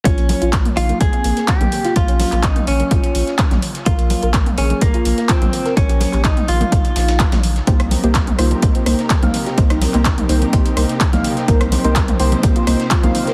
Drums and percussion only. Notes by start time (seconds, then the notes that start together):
0.05 kick, closed hi-hat
0.18 closed hi-hat
0.29 closed hi-hat, open hi-hat, high conga
0.42 closed hi-hat
0.53 kick, snare, clap, closed hi-hat
0.65 closed hi-hat, mid tom
0.77 closed hi-hat, open hi-hat
0.89 closed hi-hat, high conga
1.01 kick, closed hi-hat
1.13 closed hi-hat
1.24 closed hi-hat, open hi-hat
1.37 snare, closed hi-hat
1.48 kick, snare, clap, closed hi-hat
1.61 closed hi-hat, mid tom, high conga
1.72 closed hi-hat, open hi-hat
1.85 snare, closed hi-hat
1.96 kick, closed hi-hat
2.08 closed hi-hat
2.20 open hi-hat, high conga
2.32 clap, closed hi-hat
2.43 kick, snare, clap, closed hi-hat
2.56 closed hi-hat, mid tom
2.67 closed hi-hat, open hi-hat
2.80 closed hi-hat, high conga
2.91 kick, closed hi-hat
3.04 closed hi-hat
3.15 closed hi-hat, open hi-hat
3.27 snare, closed hi-hat
3.38 kick, snare, clap, closed hi-hat
3.51 snare, closed hi-hat, mid tom, high conga
3.62 closed hi-hat, open hi-hat
3.75 snare, closed hi-hat
3.86 kick, closed hi-hat
3.99 closed hi-hat
4.10 closed hi-hat, open hi-hat, high conga
4.23 closed hi-hat
4.34 kick, snare, clap, closed hi-hat
4.46 closed hi-hat, mid tom
4.58 closed hi-hat, open hi-hat
4.70 closed hi-hat, high conga
4.81 kick, closed hi-hat
4.94 closed hi-hat
5.05 closed hi-hat, open hi-hat
5.18 snare, closed hi-hat
5.29 kick, snare, clap, closed hi-hat
5.42 closed hi-hat, mid tom, high conga
5.53 closed hi-hat, open hi-hat
5.66 snare, closed hi-hat
5.77 kick, closed hi-hat
5.89 closed hi-hat
6.01 open hi-hat, high conga
6.13 clap, closed hi-hat
6.24 kick, snare, clap, closed hi-hat
6.37 closed hi-hat, mid tom
6.48 closed hi-hat, open hi-hat
6.61 closed hi-hat, mid tom, high conga
6.72 kick, closed hi-hat
6.85 closed hi-hat
6.96 snare, closed hi-hat, open hi-hat
7.08 snare, closed hi-hat
7.19 kick, snare, clap, closed hi-hat
7.32 snare, closed hi-hat, mid tom, high conga
7.43 closed hi-hat, open hi-hat
7.56 snare, closed hi-hat
7.67 kick, closed hi-hat
7.80 cross-stick, closed hi-hat
7.91 closed hi-hat, open hi-hat, high conga
8.04 closed hi-hat
8.15 kick, snare, clap, closed hi-hat
8.27 closed hi-hat, mid tom
8.39 cross-stick, closed hi-hat, open hi-hat
8.51 closed hi-hat, high conga
8.62 kick, closed hi-hat
8.75 closed hi-hat
8.86 cross-stick, closed hi-hat, open hi-hat
8.99 snare, closed hi-hat
9.10 kick, snare, clap, closed hi-hat
9.23 closed hi-hat, mid tom, high conga
9.34 closed hi-hat, open hi-hat
9.46 snare, closed hi-hat
9.58 kick, closed hi-hat
9.70 cross-stick, closed hi-hat
9.81 open hi-hat, high conga
9.94 clap, closed hi-hat
10.05 kick, snare, clap, closed hi-hat
10.18 closed hi-hat, mid tom
10.29 closed hi-hat, open hi-hat
10.42 closed hi-hat, high conga
10.53 kick, closed hi-hat
10.66 closed hi-hat
10.77 cross-stick, closed hi-hat, open hi-hat
10.89 snare, closed hi-hat
11.00 kick, snare, clap, closed hi-hat
11.13 snare, closed hi-hat, mid tom, high conga
11.24 closed hi-hat, open hi-hat
11.37 snare, closed hi-hat
11.48 kick, closed hi-hat
11.61 cross-stick, closed hi-hat
11.72 closed hi-hat, open hi-hat, high conga
11.84 closed hi-hat
11.96 kick, snare, clap, closed hi-hat
12.08 closed hi-hat, mid tom
12.20 closed hi-hat, open hi-hat
12.32 closed hi-hat, high conga
12.43 kick, closed hi-hat
12.56 closed hi-hat
12.67 cross-stick, closed hi-hat, open hi-hat
12.80 snare, closed hi-hat
12.91 kick, snare, clap, closed hi-hat
13.03 closed hi-hat, mid tom, high conga
13.15 closed hi-hat, open hi-hat
13.27 snare, closed hi-hat